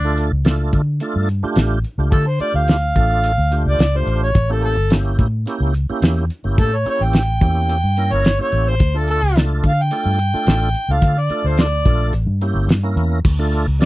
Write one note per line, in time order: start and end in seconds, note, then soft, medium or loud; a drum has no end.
0.00 0.30 D2 medium
0.00 0.42 D4 loud
0.04 0.31 A3 medium
0.04 0.31 D4 medium
0.04 0.32 F4 medium
0.04 0.32 A4 loud
0.18 closed hi-hat medium
0.32 0.71 C#2 medium
0.44 0.81 A3 medium
0.44 0.82 D4 medium
0.44 0.82 F4 medium
0.44 0.82 A4 medium
0.44 snare loud
0.44 closed hi-hat medium
0.73 0.99 D3 medium
0.73 kick medium
0.73 closed hi-hat medium
1.00 1.28 A3 medium
1.00 1.29 D4 medium
1.00 1.29 F4 medium
1.00 1.29 A4 loud
1.00 closed hi-hat medium
1.16 1.42 G2 medium
1.29 closed hi-hat medium
1.43 1.79 A3 medium
1.43 1.79 D4 medium
1.43 1.79 F4 medium
1.43 1.79 G4 loud
1.43 muted fingered electric bass stroke soft
1.56 1.83 A1 medium
1.56 snare loud
1.56 closed hi-hat medium
1.84 closed hi-hat medium
1.98 2.11 C#2 medium
1.98 2.26 A3 medium
1.98 2.26 D4 medium
1.98 2.26 F4 medium
1.98 2.27 G4 medium
2.12 2.39 D3 medium
2.12 2.26 A4 medium
2.12 kick loud
2.12 closed hi-hat medium
2.28 2.40 C5 medium
2.40 2.77 A3 medium
2.40 2.77 D4 medium
2.40 2.77 F4 medium
2.40 2.77 G4 medium
2.40 2.54 D5 loud
2.40 muted fingered electric bass stroke soft
2.40 closed hi-hat medium
2.54 2.93 D2 medium
2.54 3.63 F5 medium
2.68 snare loud
2.68 closed hi-hat medium
2.95 3.36 A1 medium
2.95 3.32 A3 medium
2.95 3.32 D4 medium
2.95 3.32 F4 medium
2.95 3.33 A4 medium
2.95 kick medium
2.95 closed hi-hat medium
3.24 closed hi-hat medium
3.38 3.65 D2 medium
3.51 3.79 A3 medium
3.51 3.79 D4 medium
3.51 3.79 F4 medium
3.51 3.79 G4 medium
3.51 closed hi-hat medium
3.66 3.78 C#2 medium
3.66 3.98 D5 medium
3.79 4.04 C#2 medium
3.79 snare loud
3.79 closed hi-hat medium
3.95 4.30 A3 medium
3.95 4.30 D4 medium
3.95 4.31 F4 medium
3.95 4.31 G4 medium
3.95 4.23 C5 medium
4.06 4.32 A1 medium
4.06 closed hi-hat medium
4.23 4.50 C#5 medium
4.35 4.75 A1 medium
4.35 kick loud
4.35 closed hi-hat medium
4.49 4.77 A#3 medium
4.49 4.77 C#4 medium
4.49 4.77 E4 medium
4.49 4.77 G4 medium
4.49 4.63 A4 medium
4.63 4.91 A4 medium
4.63 closed hi-hat medium
4.77 5.16 G1 medium
4.90 5.27 A#3 medium
4.90 5.27 C#4 medium
4.90 5.28 E4 medium
4.90 5.28 G4 medium
4.90 snare loud
4.90 closed hi-hat medium
5.19 5.45 A2 medium
5.19 kick medium
5.19 closed hi-hat medium
5.46 5.73 A#3 medium
5.46 5.74 C#4 medium
5.46 5.74 E4 medium
5.46 5.74 G4 medium
5.46 closed hi-hat medium
5.60 5.87 C#2 medium
5.74 closed hi-hat medium
5.89 6.25 A#3 medium
5.89 6.25 C#4 medium
5.89 6.25 E4 medium
5.89 6.25 G4 medium
6.02 6.29 E2 loud
6.02 snare loud
6.02 closed hi-hat medium
6.30 closed hi-hat medium
6.44 6.57 G1 medium
6.44 6.71 A#3 medium
6.44 6.72 C#4 medium
6.44 6.72 E4 medium
6.44 6.72 G4 medium
6.58 6.84 A2 medium
6.58 6.78 A4 loud
6.58 kick loud
6.58 closed hi-hat medium
6.76 6.87 C#5 medium
6.85 7.22 A#3 medium
6.85 7.22 C#4 medium
6.85 7.23 E4 medium
6.85 7.23 G4 medium
6.85 muted fingered electric bass stroke soft
6.85 closed hi-hat medium
6.90 7.05 C#5 medium
7.01 7.39 A1 medium
7.01 8.14 G5 medium
7.13 snare loud
7.13 closed hi-hat medium
7.41 7.81 E2 loud
7.41 7.78 A#3 medium
7.41 7.78 C#4 medium
7.41 7.78 E4 medium
7.41 7.78 G4 medium
7.41 kick medium
7.41 closed hi-hat medium
7.69 closed hi-hat medium
7.84 8.10 G2 medium
7.97 8.24 A#3 medium
7.97 8.24 C#4 medium
7.97 8.25 E4 medium
7.97 8.25 A#4 medium
7.97 closed hi-hat medium
8.12 8.38 G1 medium
8.12 8.39 C#5 loud
8.25 snare loud
8.25 closed hi-hat medium
8.38 8.75 A#3 medium
8.38 8.75 C#4 medium
8.38 8.75 E4 medium
8.38 8.75 G4 medium
8.38 8.71 C#5 medium
8.38 muted fingered electric bass stroke soft
8.52 8.79 A1 medium
8.52 closed hi-hat medium
8.69 8.99 C5 medium
8.80 9.20 D2 medium
8.80 kick loud
8.80 closed hi-hat medium
8.94 9.22 A3 medium
8.94 9.22 D4 medium
8.94 9.22 F4 medium
8.94 9.22 A4 medium
8.94 9.09 A4 medium
9.08 9.37 A4 loud
9.08 closed hi-hat medium
9.22 9.61 C#2 medium
9.35 9.72 A3 medium
9.35 9.72 D4 medium
9.35 9.73 F4 medium
9.35 9.73 A4 medium
9.35 snare loud
9.35 closed hi-hat medium
9.63 9.90 D3 medium
9.63 9.83 F5 medium
9.63 kick medium
9.63 closed hi-hat medium
9.82 10.93 G5 medium
9.91 10.19 A3 medium
9.91 10.19 D4 medium
9.91 10.19 F4 medium
9.91 10.19 A4 medium
9.91 closed hi-hat medium
10.05 10.32 G2 medium
10.19 closed hi-hat medium
10.33 10.69 A3 medium
10.33 10.70 D4 medium
10.33 10.70 F4 medium
10.33 10.70 A4 medium
10.33 muted fingered electric bass stroke soft
10.47 10.73 A1 loud
10.47 snare loud
10.47 closed hi-hat medium
10.74 closed hi-hat medium
10.89 11.01 C#2 medium
10.89 11.17 A3 medium
10.89 11.17 D4 medium
10.89 11.17 F4 medium
10.89 11.17 A4 medium
10.89 11.21 F5 medium
11.02 11.29 D3 medium
11.02 kick loud
11.02 closed hi-hat medium
11.20 11.49 D5 medium
11.29 11.67 A3 medium
11.29 11.67 D4 medium
11.29 11.67 F4 medium
11.29 11.67 A4 medium
11.29 muted fingered electric bass stroke soft
11.29 closed hi-hat medium
11.44 11.84 D2 medium
11.44 11.63 C5 medium
11.57 snare loud
11.57 closed hi-hat medium
11.61 12.14 D5 medium
11.85 12.12 A#1 loud
11.85 12.14 A3 medium
11.85 12.14 D4 medium
11.85 12.14 F4 medium
11.85 12.14 A4 medium
11.85 kick medium
11.85 closed hi-hat medium
12.12 12.26 A1 medium
12.12 closed hi-hat medium
12.26 12.54 G2 medium
12.41 12.69 A#3 medium
12.41 12.69 C#4 medium
12.41 12.69 E4 medium
12.41 12.69 G4 medium
12.41 closed hi-hat medium
12.55 12.68 G1 medium
12.68 12.94 G2 medium
12.68 snare loud
12.68 closed hi-hat medium
12.83 13.19 A#3 medium
12.83 13.19 C#4 medium
12.83 13.20 E4 medium
12.83 13.20 A#4 medium
12.96 13.22 E2 medium
12.96 closed hi-hat medium
13.25 13.65 D2 medium
13.25 kick loud
13.25 crash medium
13.39 13.66 A3 medium
13.39 13.66 D4 medium
13.39 13.67 F4 medium
13.39 13.67 A4 loud
13.53 closed hi-hat medium
13.68 13.85 C#2 medium
13.79 13.85 A3 medium
13.79 13.85 D4 medium
13.79 13.85 F4 medium
13.79 13.85 A4 medium
13.79 13.85 D5 medium
13.79 snare loud
13.79 closed hi-hat medium